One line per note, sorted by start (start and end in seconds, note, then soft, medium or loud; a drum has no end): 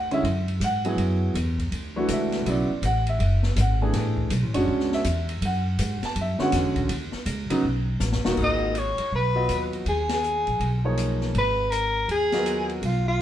0.00 0.23 D2 medium
0.00 0.12 F#5 medium
0.11 0.23 D3 medium
0.11 0.23 G#3 medium
0.11 0.23 C#4 medium
0.11 0.23 E4 medium
0.11 0.59 E5 medium
0.11 ride soft
0.23 0.60 F#2 medium
0.23 ride medium
0.48 ride soft
0.60 0.96 G#2 medium
0.60 hi-hat pedal medium
0.60 ride medium
0.64 0.97 F#5 loud
0.85 1.32 F#3 medium
0.85 1.32 B3 medium
0.85 1.33 E4 medium
0.85 1.33 G#4 medium
0.85 ride medium
0.97 1.33 F#2 medium
0.97 ride medium
1.34 1.70 E2 medium
1.34 hi-hat pedal medium
1.34 ride medium
1.59 kick medium
1.59 ride soft
1.71 2.08 D2 medium
1.71 ride medium
1.96 2.43 E3 medium
1.96 2.44 A3 medium
1.96 2.44 D4 medium
1.96 2.44 F#4 medium
2.08 2.45 C#2 medium
2.08 hi-hat pedal medium
2.08 ride medium
2.13 2.45 E5 medium
2.32 snare soft
2.32 ride soft
2.46 2.68 B1 medium
2.46 2.68 C#3 medium
2.46 2.68 F#3 medium
2.46 2.68 B3 medium
2.46 2.68 E4 medium
2.46 ride medium
2.50 2.82 D5 medium
2.82 3.18 A1 medium
2.82 3.07 F#5 medium
2.82 hi-hat pedal medium
2.82 ride medium
3.07 3.55 E5 medium
3.07 ride soft
3.19 3.55 F#1 medium
3.19 ride medium
3.43 snare soft
3.56 3.92 G#1 loud
3.56 hi-hat pedal medium
3.56 ride medium
3.61 3.93 F#5 medium
3.82 4.29 E3 medium
3.82 4.29 A3 medium
3.82 4.29 D4 medium
3.82 4.29 G#4 medium
3.93 4.29 A1 medium
3.93 snare soft
3.93 ride medium
4.17 kick medium
4.30 4.42 B1 medium
4.30 hi-hat pedal medium
4.30 ride medium
4.42 4.54 A1 medium
4.54 4.66 F#1 medium
4.54 5.02 G#3 medium
4.54 5.02 C#4 medium
4.54 5.02 D4 medium
4.54 5.02 F#4 medium
4.54 ride medium
4.67 5.03 C#2 medium
4.80 snare soft
4.92 5.40 E5 medium
4.92 snare soft
5.04 5.40 E2 medium
5.04 hi-hat pedal medium
5.04 ride medium
5.29 ride medium
5.41 5.77 F#2 medium
5.41 ride medium
5.45 6.00 F#5 medium
5.79 6.01 G#2 loud
5.79 hi-hat pedal medium
5.79 ride medium
6.03 6.16 A5 loud
6.03 muted upright bass stroke soft
6.03 snare soft
6.03 ride soft
6.15 6.38 F#2 medium
6.15 ride medium
6.21 6.41 E5 medium
6.39 6.87 D3 medium
6.39 6.87 G#3 medium
6.39 6.87 C#4 medium
6.39 6.87 F#4 medium
6.39 6.75 F#5 medium
6.39 muted upright bass stroke soft
6.39 snare medium
6.52 6.65 E2 medium
6.52 snare soft
6.52 hi-hat pedal medium
6.52 ride medium
6.64 6.77 C#2 medium
6.76 6.89 A1 medium
6.76 kick medium
6.76 ride medium
6.89 7.11 D#2 medium
6.89 ride medium
7.12 muted upright bass stroke soft
7.12 snare soft
7.26 7.48 C#2 loud
7.26 hi-hat pedal medium
7.26 ride medium
7.50 7.62 C#3 medium
7.50 7.62 F#3 medium
7.50 7.62 B3 medium
7.50 7.62 D#4 medium
7.50 muted upright bass stroke soft
7.50 ride medium
7.63 7.99 B1 medium
8.00 8.14 A1 loud
8.00 snare medium
8.00 hi-hat pedal medium
8.12 8.24 G1 medium
8.12 snare medium
8.25 8.36 D#1 medium
8.25 8.72 A#3 medium
8.25 8.72 D#4 medium
8.25 8.72 F4 medium
8.25 8.73 F#4 medium
8.25 snare medium
8.37 8.94 G#1 medium
8.37 kick medium
8.37 crash medium
8.44 8.80 D#5 medium
8.75 9.14 C#5 medium
8.75 hi-hat pedal soft
8.75 ride medium
8.98 muted upright bass stroke soft
8.98 ride medium
9.12 9.46 B1 medium
9.12 9.70 B4 medium
9.35 9.83 F#3 medium
9.35 9.83 B3 medium
9.35 9.83 F4 medium
9.35 9.83 B4 medium
9.35 9.84 D#5 medium
9.49 9.83 D#2 medium
9.49 hi-hat pedal medium
9.49 ride medium
9.73 ride soft
9.86 10.43 D#2 medium
9.86 10.09 G#4 medium
9.86 ride medium
10.09 snare medium
10.09 ride medium
10.13 10.82 G#4 medium
10.23 hi-hat pedal soft
10.47 10.59 A#1 medium
10.47 ride soft
10.59 11.30 B1 medium
10.59 ride medium
10.84 11.32 F3 medium
10.84 11.32 A#3 medium
10.84 11.32 D#4 medium
10.84 11.32 G#4 medium
10.84 11.32 C#5 medium
10.97 hi-hat pedal medium
10.97 ride medium
11.21 snare soft
11.34 12.04 G#1 medium
11.34 ride medium
11.38 11.73 B4 medium
11.71 12.08 A#4 medium
11.71 hi-hat pedal medium
11.71 ride medium
12.08 12.79 D#2 medium
12.08 12.67 G#4 medium
12.08 ride medium
12.32 12.80 F#3 medium
12.32 12.80 B3 medium
12.32 12.80 F4 medium
12.32 12.80 A#4 medium
12.32 12.80 D#5 medium
12.32 snare medium
12.32 ride soft
12.46 hi-hat pedal medium
12.46 ride medium
12.69 ride soft
12.82 13.22 B1 medium
12.82 13.06 F4 medium
12.82 ride medium
13.08 13.22 F4 medium